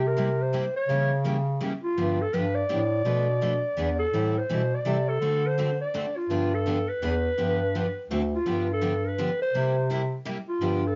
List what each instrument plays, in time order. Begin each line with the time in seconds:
Already playing: bass clarinet C3
0.07 clarinet A#4
0.16 steel-string acoustic guitar C3 G3 A#3 E4 G4
0.42 clarinet C5
0.53 steel-string acoustic guitar C3 G3 A#3 E4 G4
0.77 clarinet C#5
0.88 bass clarinet C#3, steel-string acoustic guitar C#3 E3 G3 A#3 C#4 E4 G4
1.24 steel-string acoustic guitar C#3 E3 G3 A#3 C#4 E4 G4
1.61 steel-string acoustic guitar C#3 E3 G3 A#3 C#4 E4 G4
1.83 clarinet F4
1.96 bass clarinet G2, steel-string acoustic guitar D3 F3 B3 D4 G4
2.22 clarinet A4
2.33 bass clarinet G2, steel-string acoustic guitar D3 F3 B3 D4 G4, clarinet B4
2.55 clarinet D5
2.69 bass clarinet A2, steel-string acoustic guitar D3 F3 B3 D4 G4
3.05 bass clarinet B2, steel-string acoustic guitar B2 F3 A3 D4 A4 B4
3.41 steel-string acoustic guitar B2 F3 A3 D4 A4 B4
3.77 bass clarinet E2, steel-string acoustic guitar E3 B3 D4 G#4 B4
3.99 clarinet A4
4.13 bass clarinet A2, steel-string acoustic guitar E3 G3 C4 E4 A4
4.38 clarinet C5
4.48 bass clarinet B2, steel-string acoustic guitar E3 G3 C4 E4 A4
4.74 clarinet D5
4.84 bass clarinet C3, steel-string acoustic guitar E3 G3 C4 E4 A4
5.09 clarinet A4
5.20 bass clarinet D3, steel-string acoustic guitar D3 A3 C4 F#4 A4
5.46 clarinet C5
5.58 steel-string acoustic guitar D3 A3 C4 F#4 A4
5.81 clarinet D5
5.94 steel-string acoustic guitar D3 A3 C4 F#4 A4
6.17 clarinet F4
6.29 bass clarinet G2, steel-string acoustic guitar D3 F3 B3 D4 G4
6.54 clarinet A4
6.66 steel-string acoustic guitar D3 F3 B3 D4 G4
6.88 clarinet B4
7.01 bass clarinet E2, steel-string acoustic guitar E3 B3 D4 G#4 B4
7.37 bass clarinet G2, steel-string acoustic guitar D3 F3 B3 D4 G4
7.75 steel-string acoustic guitar D3 F3 B3 D4 G4
8.09 bass clarinet D2, steel-string acoustic guitar D3 A3 C4 F#4 A4
8.35 clarinet F4
8.45 bass clarinet G2, steel-string acoustic guitar D3 F3 B3 D4 G4
8.73 clarinet A4
8.82 steel-string acoustic guitar D3 F3 B3 D4 G4
9.05 clarinet A#4 B4
9.18 steel-string acoustic guitar D3 F3 B3 D4 G4
9.42 clarinet C5
9.53 bass clarinet C3, steel-string acoustic guitar C3 G3 A#3 E4 G4
9.90 steel-string acoustic guitar C3 G3 A#3 E4 G4
10.26 steel-string acoustic guitar C3 G3 A#3 E4 G4
10.49 clarinet F4
10.61 bass clarinet G2, steel-string acoustic guitar D3 F3 B3 D4 G4
10.87 clarinet A4